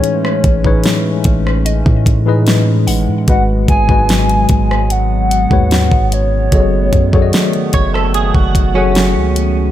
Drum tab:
HH |x-x-x-x-x-x-x-o-|x-x-xxx-x-x-x-x-|x-x-xxx-x-x-x-x-|
SD |-r--o--r----o---|----o--r----o---|----o--r----o---|
BD |--oo--o--oo-----|o-oo--o----o-o--|o-oo--o--oo-----|